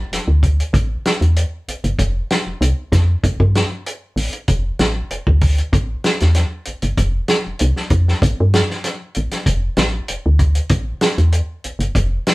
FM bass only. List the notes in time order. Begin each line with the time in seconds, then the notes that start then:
0.12 F1
0.28 D2
0.73 A1
1.21 E2
1.68 A1
1.84 G1
1.99 F1
2.47 F1
2.61 C2
2.92 F2
3.23 A1
3.40 G2
4.16 A1
4.48 F1
4.79 A1
5.11 F1
5.27 D2
5.73 A1
6.22 E2
6.68 A1
6.83 G1
6.98 F1
7.47 F1
7.61 C2
7.91 F2
8.22 A1
8.40 G2
9.17 A1
9.46 F1
9.77 A1
10.10 F1
10.26 D2
10.70 A1
11.18 E2
11.65 A1
11.79 G1
11.95 F1